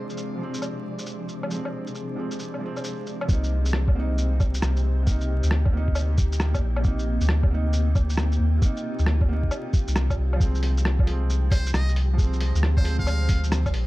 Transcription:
Already playing: felt piano C3 F3 G#3 C4, ambient pad C3 F3 G#3 C4 G#4 C5, synth texture D4 D5
0.10 shaker
0.17 shaker
0.35 felt piano C3 F3
0.40 felt piano G#3 C4
0.54 shaker
0.62 low woodblock, shaker
0.99 shaker
1.06 shaker
1.29 shaker
1.43 felt piano C3, low woodblock
1.49 felt piano F3 G#3, shaker
1.54 felt piano C4
1.65 low woodblock
1.87 shaker
1.95 shaker
2.16 felt piano C3 F3 G#3 C4
2.31 shaker
2.39 shaker
2.54 felt piano C3, low woodblock
2.60 felt piano F3 G#3
2.66 felt piano C4
2.77 low woodblock, shaker
2.84 shaker
3.07 shaker
3.21 felt piano C3, low woodblock
3.28 sub bass C2, felt piano A#3, ambient pad D#4, synth texture G4 G5, kick, shaker
3.32 felt piano D#4
3.37 ambient pad A#3
3.44 shaker
3.65 ambient pad G4, shaker
3.73 cross-stick
3.88 felt piano C3, kick, low woodblock
3.95 felt piano A#3
4.00 felt piano D#4
4.18 shaker
4.40 kick, low woodblock, shaker
4.54 shaker
4.62 sub bass C2, cross-stick, shaker
4.77 shaker
5.03 felt piano C3 A#3
5.07 felt piano D#4, kick, shaker
5.21 shaker
5.43 sub bass D2, shaker
5.51 cross-stick
5.65 felt piano C3, kick, low woodblock
5.73 felt piano A#3
5.77 felt piano D#4
5.88 kick
5.95 low woodblock, shaker
6.18 kick, shaker
6.32 shaker
6.40 cross-stick, shaker
6.54 kick, low woodblock, shaker
6.62 sub bass A#1
6.76 felt piano C3, low woodblock
6.82 felt piano A#3, ambient pad F4, kick, shaker
6.88 felt piano D#4
6.99 shaker
7.20 sub bass D2, shaker
7.29 cross-stick
7.43 felt piano C3, kick, low woodblock
7.50 felt piano A#3 D#4
7.73 shaker
7.95 kick, low woodblock, shaker
8.10 shaker
8.17 cross-stick, shaker
8.32 shaker
8.39 sub bass D#2
8.57 felt piano C3
8.62 felt piano A#3, kick, shaker
8.66 felt piano D#4
8.77 shaker
8.99 sub bass D2, shaker
9.06 cross-stick
9.21 felt piano C3, kick, low woodblock
9.29 felt piano A#3
9.33 felt piano D#4
9.43 kick
9.51 low woodblock, shaker
9.73 kick, shaker
9.87 sub bass C2, shaker
9.96 cross-stick, shaker
10.10 kick, low woodblock, shaker
10.17 sub bass C2
10.33 felt piano F3, low woodblock
10.39 sub bass C2, ambient pad F3, felt piano G#3, kick, shaker
10.44 felt piano C4
10.55 shaker
10.60 ambient pad G#3, open hi-hat
10.69 ambient pad C4
10.77 shaker
10.85 cross-stick
10.95 ambient pad C5
10.99 felt piano F3, kick, low woodblock
11.07 felt piano G#3, open hi-hat
11.11 felt piano C4
11.30 shaker
11.51 muted trumpet C5, kick, open hi-hat, low woodblock, shaker
11.67 shaker
11.73 sub bass C2, muted trumpet D#5, cross-stick, shaker
11.89 shaker
11.96 open hi-hat
12.13 felt piano F3
12.18 felt piano G#3 C4, kick, shaker
12.33 shaker
12.40 open hi-hat
12.55 sub bass D2, shaker
12.63 cross-stick
12.77 felt piano F3, muted trumpet C5, kick, low woodblock
12.84 felt piano G#3, open hi-hat
12.88 felt piano C4
12.99 muted trumpet F5, kick
13.07 low woodblock, shaker
13.29 kick, open hi-hat, shaker
13.44 shaker
13.52 cross-stick, shaker
13.66 kick, low woodblock, shaker
13.73 sub bass A#1, open hi-hat

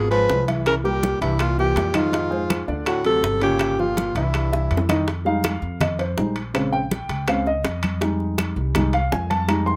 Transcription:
Already playing: upright bass G#1, baritone saxophone B2, alto saxophone G#4
0.11 baritone saxophone F3, grand piano G#3 G#4 B4, alto saxophone B4, high conga, high timbale
0.29 upright bass C2, high bongo, low bongo, high conga, low timbale
0.48 grand piano E3 E4 E5, high conga, high timbale
0.66 baritone saxophone C#3, alto saxophone A#4, high bongo, high conga, high timbale, claves
0.84 baritone saxophone A#2, grand piano G3 G4 A#4, alto saxophone G4, high bongo, high conga
1.03 high bongo, high conga, high timbale
1.21 upright bass C2, baritone saxophone G2, grand piano E3 E4 E5, alto saxophone E4, high bongo, high timbale
1.39 baritone saxophone A#2, alto saxophone F4, high bongo, high conga, high timbale, claves
1.58 baritone saxophone A#2, grand piano E3 E4 E5, alto saxophone G4, high bongo, high conga
1.76 upright bass F2, high bongo, low bongo, high conga, high timbale, low timbale
1.94 baritone saxophone G#2, grand piano D#3 D#4 D#5, alto saxophone F4, high conga, high timbale, claves
2.12 grand piano D#3 D#4 D#5, high bongo, high conga, high timbale
2.30 grand piano G#3 G#4 C5, high conga
2.50 high bongo, high conga, high timbale, claves
2.68 upright bass D2, grand piano D3 D4 D5, high conga
2.86 baritone saxophone A2, alto saxophone F#4, high bongo, high conga, high timbale, claves
3.05 baritone saxophone C3, grand piano F#3 F#4 A4, alto saxophone A4, high conga, high timbale
3.23 upright bass G1, high bongo, low bongo, high conga
3.42 baritone saxophone A#2, grand piano C#3 C#4 C#5, alto saxophone G4, high timbale
3.59 high bongo, high conga, high timbale, claves
3.79 baritone saxophone A#2, grand piano F3 F4 G4, alto saxophone F4, high bongo, high conga
3.97 high bongo, high conga, high timbale
4.15 upright bass C2, baritone saxophone G2, grand piano E3 E4 E5, alto saxophone E4, high bongo, high timbale
4.34 high bongo, high conga, high timbale, claves
4.52 grand piano E3 E4 E5, high bongo, high conga
4.71 upright bass F2, high conga, high timbale, low timbale
4.77 low bongo
4.89 grand piano D#3 D#4 D#5, low bongo, high conga, high timbale, claves
5.08 high bongo, high timbale
5.25 grand piano G3 G#3 D#4 F5, high conga
5.44 high bongo, high conga, high timbale, claves
5.62 upright bass F2, high conga
5.81 grand piano D#5, high bongo, high conga, low conga, high timbale, claves
5.99 grand piano C5, high conga, high timbale
6.17 upright bass A#1, grand piano G3 G#3 D#4, high bongo, low bongo, high conga
6.36 high timbale
6.54 grand piano C#3 G#3 C4, high bongo, high conga, high timbale, claves
6.73 grand piano G5, high bongo, high conga
6.91 high bongo, high conga, high timbale
7.09 upright bass C#2, high bongo, high timbale
7.28 grand piano C#3 G#3 C4 F5, high bongo, high conga, high timbale, claves
7.46 grand piano D#5, high bongo, high conga
7.64 upright bass F2, high bongo, low bongo, high conga, high timbale
7.83 high conga, high timbale, claves
8.01 grand piano G3 G#3 D#4, high bongo, high conga, high timbale
8.20 high conga
8.38 high bongo, high conga, high timbale, claves
8.56 upright bass C2, high conga
8.75 grand piano G3 G#3 D#4, high bongo, high conga, low conga, high timbale, claves
8.93 grand piano F5, high conga, high timbale
9.12 upright bass F2, grand piano G#5, high bongo, low bongo, high conga, low timbale
9.30 grand piano A5, high conga, high timbale
9.48 grand piano G3 G#3 D#4 A#5, high bongo, high conga, high timbale, claves
9.66 grand piano C6, high bongo, high conga

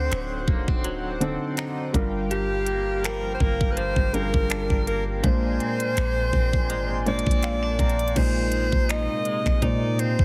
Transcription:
Already playing: felt piano D3 C4 D#4 F#4, clean electric guitar D3 C4, alto saxophone C5, analog synth pad C5 F#5 D6
0.11 808-style bass D1, clean electric guitar F#3, finger snap, closed hi-hat
0.48 808-style bass D1, clean electric guitar A#3, kick
0.68 clean electric guitar C4, kick
0.84 clean electric guitar F#3, closed hi-hat
1.20 felt piano D3 C4 D#4 A4, clean electric guitar C4, closed hi-hat
1.57 clean electric guitar D#4, finger snap, closed hi-hat
1.93 808-style bass G1, clean electric guitar G2, felt piano G3 D4 F4 A#4, analog synth pad A#4 F5 G5, kick, closed hi-hat
2.31 clean electric guitar G2, alto saxophone G4, closed hi-hat
2.66 clean electric guitar A#3, closed hi-hat
3.04 clean electric guitar F3, alto saxophone A#4, finger snap, closed hi-hat
3.35 alto saxophone C5
3.40 808-style bass G1, clean electric guitar A#3, alto saxophone A#4, kick
3.61 kick
3.71 alto saxophone B4
3.77 clean electric guitar F3, alto saxophone C5, closed hi-hat
3.96 808-style bass G1, kick
4.13 felt piano G3 D4 F4 G#4, clean electric guitar A#3, alto saxophone A#4, closed hi-hat
4.22 felt piano A#4
4.34 808-style bass G1, kick
4.50 clean electric guitar D4, finger snap, closed hi-hat
4.70 808-style bass G1, kick
4.87 clean electric guitar A#3, alto saxophone A#4, closed hi-hat
5.23 808-style bass A#1, felt piano A#2 G#3 D4 C5, clean electric guitar A#2, alto saxophone C5, analog synth pad D5 G#5 C6, kick, closed hi-hat
5.60 clean electric guitar C4, closed hi-hat
5.80 closed hi-hat
5.97 808-style bass A#1, clean electric guitar G#3, finger snap, closed hi-hat
6.33 808-style bass A#1, clean electric guitar C4, kick
6.53 kick
6.70 808-style bass G#1, clean electric guitar G#3, closed hi-hat
7.06 felt piano A#2 G#3 D4 C5, clean electric guitar A#3, alto saxophone D5, closed hi-hat
7.19 closed hi-hat
7.26 808-style bass A#1, clean electric guitar C4, kick
7.31 closed hi-hat
7.43 clean electric guitar C4, felt piano F5, finger snap, closed hi-hat
7.63 clean electric guitar D4
7.79 808-style bass A#1, clean electric guitar C4, felt piano A#5, kick, closed hi-hat
7.89 closed hi-hat
7.99 closed hi-hat
8.08 closed hi-hat
8.15 808-style bass A#1, felt piano A#2 G#3 D#4 C5, clean electric guitar A#2, analog synth pad C3 G#3 A#3 D#4, alto saxophone C5, kick, closed hi-hat, crash
8.52 clean electric guitar G#3, closed hi-hat
8.72 808-style bass A#1, kick
8.89 clean electric guitar D#4, synth pluck D#5, alto saxophone D#5, finger snap, closed hi-hat
9.25 clean electric guitar G#3, closed hi-hat
9.46 808-style bass A#1, finger snap, kick
9.62 felt piano A#2 G#3 D#4 C5, 808-style bass A#2, clean electric guitar D#4, alto saxophone D5, kick, closed hi-hat
9.99 clean electric guitar C4, alto saxophone C5, closed hi-hat
10.19 808-style bass D2, kick

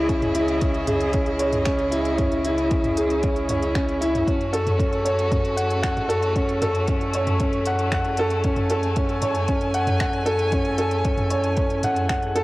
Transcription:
Already playing: sub bass C#2, string quartet C#3 C#4 E4 G#4 D#5, grand piano C#4 E4 G#4 C#5
0.08 grand piano C#4, kick, closed hi-hat
0.22 closed hi-hat, mid tom
0.35 grand piano E4, closed hi-hat
0.48 closed hi-hat
0.61 grand piano C#4, kick, closed hi-hat
0.74 closed hi-hat
0.87 grand piano G#4, closed hi-hat, mid tom
1.00 closed hi-hat
1.13 grand piano C#4, kick, closed hi-hat
1.26 closed hi-hat
1.39 grand piano C#5, closed hi-hat
1.53 closed hi-hat, mid tom
1.65 grand piano C#4, finger snap, kick, closed hi-hat
1.79 closed hi-hat
1.91 grand piano E4, closed hi-hat
2.05 closed hi-hat
2.18 grand piano C#4, kick, closed hi-hat, mid tom
2.32 closed hi-hat
2.45 grand piano E4, closed hi-hat
2.58 closed hi-hat
2.71 grand piano C#4, kick, closed hi-hat
2.84 closed hi-hat, mid tom
2.97 grand piano G#4, closed hi-hat
3.10 closed hi-hat
3.23 grand piano C#4, kick, closed hi-hat
3.36 closed hi-hat
3.49 grand piano C#5, closed hi-hat, mid tom
3.62 closed hi-hat
3.75 grand piano C#4, finger snap, kick, closed hi-hat
3.89 closed hi-hat
4.01 grand piano E4, closed hi-hat
4.15 closed hi-hat, mid tom
4.27 sub bass F#2, string quartet A3 F#4, grand piano C#4, kick, closed hi-hat
4.41 closed hi-hat
4.53 grand piano A4, closed hi-hat
4.67 closed hi-hat, mid tom
4.78 grand piano C#4, kick, closed hi-hat
4.93 closed hi-hat
5.05 grand piano C#5, closed hi-hat
5.19 closed hi-hat
5.31 grand piano C#4, kick, closed hi-hat, mid tom
5.45 closed hi-hat
5.57 grand piano F#5, closed hi-hat
5.70 closed hi-hat
5.83 grand piano F#5, finger snap, kick, closed hi-hat
5.97 closed hi-hat, mid tom
6.09 grand piano A4, closed hi-hat
6.22 closed hi-hat
6.35 grand piano C#4, kick, closed hi-hat
6.49 closed hi-hat
6.62 grand piano A4, closed hi-hat, mid tom
6.75 closed hi-hat
6.88 grand piano C#4, kick, closed hi-hat
7.01 closed hi-hat
7.13 grand piano C#5, closed hi-hat
7.27 closed hi-hat, mid tom
7.40 grand piano C#4, kick, closed hi-hat
7.53 closed hi-hat
7.66 grand piano F#5, closed hi-hat
7.79 closed hi-hat
7.92 grand piano F#5, finger snap, kick, closed hi-hat, mid tom
8.05 closed hi-hat
8.17 grand piano A4, closed hi-hat
8.30 closed hi-hat
8.43 grand piano C#4, string quartet G#5, kick, closed hi-hat
8.56 closed hi-hat, mid tom
8.70 grand piano A4, closed hi-hat
8.83 closed hi-hat
8.96 grand piano C#4, kick, closed hi-hat
9.09 closed hi-hat
9.22 grand piano C#5, closed hi-hat, mid tom
9.35 closed hi-hat
9.48 grand piano C#4, kick, closed hi-hat
9.61 closed hi-hat
9.74 grand piano F#5, closed hi-hat
9.87 closed hi-hat, mid tom
10.00 grand piano F#5, finger snap, kick, closed hi-hat
10.13 closed hi-hat
10.26 grand piano A4, closed hi-hat
10.39 closed hi-hat
10.52 grand piano C#4, kick, closed hi-hat, mid tom
10.65 closed hi-hat
10.78 grand piano A4, closed hi-hat
10.91 closed hi-hat
11.05 grand piano C#4, kick, closed hi-hat
11.18 closed hi-hat, mid tom
11.31 grand piano C#5, closed hi-hat
11.44 closed hi-hat
11.57 grand piano C#4, kick, closed hi-hat
11.70 closed hi-hat
11.83 grand piano F#5, closed hi-hat, mid tom
11.96 closed hi-hat
12.09 grand piano F#5, finger snap, kick, closed hi-hat
12.23 closed hi-hat
12.35 grand piano A4, closed hi-hat

